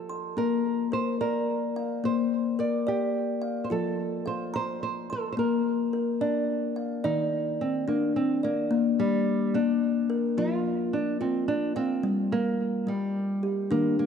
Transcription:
0.00 0.34 F3 medium
0.00 0.37 A4 medium
0.09 0.65 C6 medium
0.37 0.93 A#3 medium
0.37 0.89 A#4 medium
0.92 1.76 A#4 medium
0.92 1.19 C5 medium
1.21 2.05 A#4 medium
1.21 1.76 D5 medium
1.76 2.60 F5 medium
2.04 2.60 A#3 medium
2.04 2.56 C5 medium
2.59 3.43 A#4 medium
2.59 2.88 D5 medium
2.87 3.67 G4 medium
2.87 3.43 D5 medium
3.42 3.98 F5 medium
3.64 3.71 C5 medium
3.70 5.35 F3 medium
3.70 4.26 F4 medium
3.70 4.27 A4 medium
4.26 4.54 C5 medium
4.26 5.10 F5 medium
4.54 4.82 C5 medium
4.54 5.10 A#5 medium
4.83 5.11 C5 medium
5.10 5.32 A4 medium
5.10 5.66 C6 medium
5.32 5.38 C5 medium
5.37 5.93 A#3 medium
5.37 6.45 A#4 medium
5.93 6.77 A#4 medium
6.21 7.04 D4 medium
6.21 6.77 D5 medium
6.76 7.32 F5 medium
7.04 8.68 D#3 medium
7.04 7.62 D#4 medium
7.04 7.60 D5 medium
7.61 7.88 C4 medium
7.88 8.14 A#3 medium
7.88 8.43 D4 medium
8.16 8.44 C4 medium
8.43 9.01 A#3 medium
8.43 8.99 D5 medium
8.71 9.26 A#3 medium
8.99 9.56 G3 medium
9.54 10.10 A#3 medium
9.54 10.40 D4 medium
10.10 10.65 A#4 medium
10.38 12.01 F3 medium
10.38 10.95 F4 medium
10.38 10.93 F4 medium
10.93 11.21 D4 medium
11.21 11.48 C4 medium
11.21 11.76 F4 medium
11.48 11.76 D4 medium
11.76 12.33 C4 medium
11.76 12.32 F5 medium
12.03 12.59 G3 medium
12.32 12.89 A#3 medium
12.87 13.42 G3 medium
12.87 13.46 G3 medium
13.43 13.98 G4 medium
13.71 14.06 D#3 medium
13.71 13.98 A#3 medium
13.71 14.06 D4 medium
13.99 14.06 A#3 medium

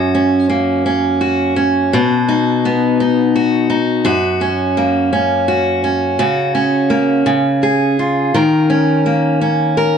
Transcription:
0.00 1.94 F#2 medium
0.00 0.15 C#4 soft
0.00 1.20 F#4 soft
0.15 0.85 C#4 soft
0.49 2.00 A#3 soft
0.86 1.55 C#4 soft
1.21 1.94 F#4 medium
1.56 2.00 C#4 soft
1.93 4.06 B2 medium
1.93 3.35 F#4 soft
2.28 2.99 D#4 soft
2.65 4.14 B3 soft
3.00 3.69 D#4 medium
3.36 4.05 F#4 medium
3.70 4.13 D#4 medium
4.05 6.18 F#2 medium
4.05 5.47 F#4 medium
4.41 5.12 C#4 soft
4.77 6.26 A#3 soft
5.13 5.83 C#4 medium
5.48 6.18 F#4 medium
5.84 6.54 C#4 soft
6.19 7.25 C#3 medium
6.19 7.34 F#4 soft
6.55 7.99 C#4 soft
6.90 7.33 A#3 soft
7.26 8.34 C#3 medium
7.63 8.34 G#4 medium
7.99 8.42 F4 soft
8.34 9.98 D#3 medium
8.34 9.77 A#4 medium
8.70 9.40 C#4 soft
9.06 9.98 A#3 soft
9.41 9.98 C#4 soft
9.77 9.98 A#4 medium

